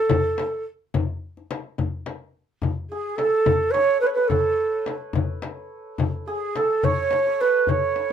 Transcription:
Already playing: A4
0.09 frame drum, tombak dum
0.25 tombak ka
0.38 tombak tek, frame drum
0.94 frame drum, tombak dum
1.37 tombak ka
1.51 tombak tek, frame drum
1.78 frame drum, tombak dum
2.06 tombak tek, frame drum
2.62 tombak dum, frame drum
2.90 G#4
3.16 A4, tombak tek, frame drum
3.46 frame drum, tombak dum
3.71 C#5, tombak tek, frame drum
4.00 B4
4.06 C#5
4.13 B4
4.28 A4, tombak dum, frame drum
4.86 tombak tek, frame drum
5.13 tombak dum, frame drum
5.42 tombak tek, frame drum
5.98 tombak dum, frame drum
6.27 G#4
6.56 A4, tombak tek, frame drum
6.83 C#5, tombak dum, frame drum
6.97 tombak ka
7.11 tombak tek, frame drum
7.27 C#5
7.40 B4
7.67 C#5, tombak dum, frame drum
7.96 tombak tek

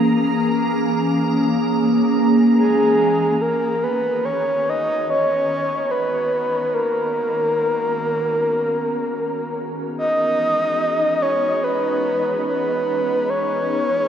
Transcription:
Already playing: E3 A#3 C#4 G#4 A#5
2.58 G#4
3.40 D#3 G#3 D#4 A#4
3.46 B3
3.60 F#4
3.83 B4
4.25 C#5
4.69 D#5
5.10 C#5
5.91 B4
6.74 A#4
9.98 E3 D#5
10.10 D#4
10.35 G#4
11.22 C#5
11.64 B4
12.47 B4
13.30 C#5

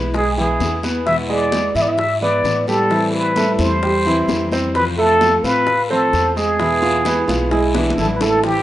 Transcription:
Already playing: B1 E3 G#3 B3 E4
0.14 G#3 G#4, muted steel-string acoustic guitar stroke, high bongo, high conga, long guiro
0.37 E3 G#3 B3 E4 G#4, high conga
0.60 E2 E3 G#3 B3 E4, high bongo, low bongo, high conga, short guiro
0.83 B3 B4, high bongo, high conga, short guiro
1.06 B2 E3 G#3 B3 E4 E5, high bongo, high conga, long guiro
1.29 G#3 G#4 D5, high bongo, high conga
1.52 E3 G#3 B3 E4, high bongo, high conga, short guiro
1.75 G#2 E3 G#3 B3 E4 E5, high conga, short guiro
1.82 D5
1.89 E5
1.98 muted steel-string acoustic guitar stroke, high bongo, high conga, long guiro
2.21 E3 G#3 B3 E4 B4 D5, high conga
2.44 A2 E3 G#3 B3 E4, high bongo, low bongo, high conga, short guiro
2.67 G3 G4 A4, high bongo, high conga, short guiro
2.90 E3 G3 C4 E4, high bongo, high conga, long guiro
3.13 B4, high bongo, high conga
3.36 E3 G3 A3 C4 E4 A4, high bongo, high conga, short guiro
3.59 E2 G3 C4 E4 C5, high conga, short guiro
3.82 G3 G4, muted steel-string acoustic guitar stroke, high bongo, high conga, long guiro
4.05 E3 G3 C4 E4, high conga
4.28 F2 E3 G3 C4 E4, high bongo, low bongo, high conga, short guiro
4.52 C4 C5, high bongo, high conga, short guiro
4.75 C3 F3 A3 C4 F4 B4, high bongo, high conga, long guiro
4.97 A3 A4, high bongo, high conga
5.21 F3 A3 C4 F4, high bongo, high conga, short guiro
5.43 A2 F3 A3 C4 F4 B4 F5, high conga, short guiro
5.67 muted steel-string acoustic guitar stroke, high bongo, high conga, long guiro
5.90 F3 A3 C4 F4 A4 C5, high conga
6.13 E2 A3 C4 F4, high bongo, low bongo, high conga, short guiro
6.36 G#3 G#4, high bongo, short guiro
6.59 B2 E3 G#3 B3 E4, high bongo, high conga, long guiro
6.82 F4, high bongo, high conga
7.05 E3 G#3 B3 E4 B4, high bongo, high conga, short guiro
7.28 B1 E3 G#3 B3 E4 F4, high conga, short guiro
7.51 G#3 E4 G#4, muted steel-string acoustic guitar stroke, high bongo, high conga, long guiro
7.74 E3 G#3 B3 D4 E4, high bongo, high conga
7.90 high conga
7.98 A1 E3 G#3 B3 E4 A4, short guiro
8.05 low conga
8.15 B4
8.21 A3 A4, low bongo, low conga, short guiro
8.44 E3 G3 C4 E4 G4, high bongo, high conga, long guiro

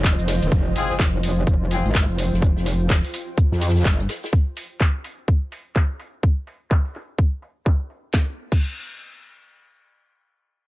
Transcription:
Already playing: F1 F4 C5 D#5
0.04 kick, clap, closed hi-hat, cabasa
0.19 F1, cabasa, shaker
0.28 snare, open hi-hat, ride, shaker
0.42 D#1, closed hi-hat, cabasa
0.52 F1 F4, kick, impact, shaker
0.76 C4 F4 G#4, open hi-hat, shaker
0.90 snare
0.99 F1, kick, snare, clap, shaker
1.23 open hi-hat, shaker
1.47 F1, kick, shaker
1.71 C4 F4 G#4, open hi-hat, shaker
1.85 G#1, closed hi-hat
1.95 kick, snare, clap, shaker
2.09 F1
2.18 open hi-hat, shaker
2.33 F1, snare
2.42 kick, shaker
2.57 F1, snare
2.66 snare, open hi-hat, shaker
2.89 kick, snare, clap, shaker
3.04 open hi-hat
3.14 open hi-hat, shaker
3.38 kick, shaker
3.52 F2, snare
3.61 snare, open hi-hat, shaker
3.69 snare, shaker
3.76 snare, shaker
3.80 snare, shaker
3.85 G1, kick, snare, clap, shaker
4.00 closed hi-hat
4.09 snare, open hi-hat, shaker
4.23 snare, shaker
4.33 kick
4.57 open hi-hat
4.80 kick, clap
5.04 open hi-hat
5.28 kick
5.52 open hi-hat
5.76 kick, clap
6.00 open hi-hat
6.23 kick
6.47 open hi-hat
6.71 kick, clap
6.85 open hi-hat
6.95 clap, open hi-hat
7.19 kick
7.42 open hi-hat
7.66 kick, clap
7.90 open hi-hat
8.14 kick, snare
8.52 kick, crash

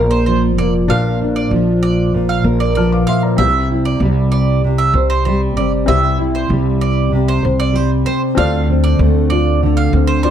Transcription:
Already playing: A#1 A#2 F3 D4 F4 A#4 F5
0.11 C5
0.26 F3 C5
0.58 F1 A#3 D5
0.88 A#1 A#2 D4 F4 A#4 F5
1.21 D4
1.36 D5
1.51 A#1 F3
1.83 D5
2.14 A#2
2.29 F5
2.44 A#1 A#4
2.60 D5
2.75 F3 D5 A5 F6
2.92 F5 D6
3.07 A#3 E5 F5 C6
3.23 D5 A#5
3.37 C2 C3 C4 E4 G4 E5
3.71 E4
3.85 D5
4.00 C2 G3
4.32 D5
4.64 C3
4.78 E5
4.94 C2 C5
5.10 C5
5.25 G3 C5
5.57 G1 C4 D5
5.86 C2 C3 C4 E4 G4 E5
6.19 E4
6.35 C5
6.50 C2 G3
6.81 D5
7.12 C3
7.28 C5
7.43 C2 C5
7.60 D5
7.73 G3 C5
8.05 C4 C5
8.35 D2 D3 C4 D4 F4 A4 F5
8.39 D5
8.70 C4
8.84 D5
8.99 D2 A3
9.30 F4 D5
9.63 D3
9.77 F5
9.93 D2 C4
10.07 C5
10.23 A3 F4 C5 D5

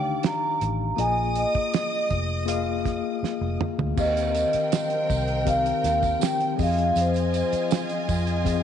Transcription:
Already playing: D2 D4 D#4 G4 D5 F5 G5 D6
0.23 A#5, snare, closed hi-hat
0.61 A1, closed hi-hat
0.96 A#1 A#3 F4 G#4 D#5 G#5 D#6, closed hi-hat
1.36 D#5, closed hi-hat
1.55 muted fingered electric bass stroke, kick
1.74 snare, closed hi-hat
2.11 F1, kick, closed hi-hat
2.46 A#3 F4 G#4 F5, closed hi-hat
2.85 kick, snare, closed hi-hat
3.23 muted fingered electric bass stroke, snare
3.41 F1
3.61 mid tom
3.78 D2, floor tom
3.95 D#2 D#3 C4 G4 A#4 F5, kick, crash, tambourine
3.99 D#5 G5
4.17 closed hi-hat, tambourine
4.35 closed hi-hat, tambourine
4.53 muted fingered electric bass stroke, closed hi-hat, tambourine
4.72 snare, closed hi-hat, tambourine
4.90 closed hi-hat
5.10 C2, kick, closed hi-hat, tambourine
5.28 closed hi-hat
5.44 D#3 C4 G4 F5, kick, closed hi-hat, tambourine
5.49 F5
5.66 closed hi-hat
5.84 D#2, snare, closed hi-hat, tambourine
6.03 kick, closed hi-hat, tambourine
6.19 D#3 C4 G4 G5, closed hi-hat, tambourine
6.23 G5, snare
6.40 closed hi-hat
6.56 F2 F3 C4 F4 G#4 D#5 G#5, kick, tambourine
6.61 F5, open hi-hat
6.78 closed hi-hat
6.96 F2, closed hi-hat, tambourine
7.00 C5
7.14 closed hi-hat, tambourine
7.34 closed hi-hat, tambourine
7.52 muted fingered electric bass stroke, closed hi-hat, tambourine
7.71 snare, closed hi-hat, tambourine
7.89 closed hi-hat
8.09 F2, kick, closed hi-hat, tambourine
8.27 closed hi-hat
8.44 F3 C4 G#4 D#5, kick, closed hi-hat, tambourine

